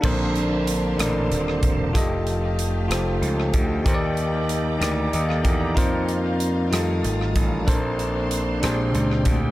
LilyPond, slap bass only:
\new Staff \with { instrumentName = "Slap bass" } { \clef bass \time 6/8 \key bes \major \tempo 4. = 63 bes,,4. a,,8 ees,,8 e,,8 | f,,4. f,,8 des,8 d,8 | ees,4. d,8 ees,8 e,8 | f,4. f,8 aes,,8 a,,8 |
bes,,4. bes,,8 des,8 d,8 | }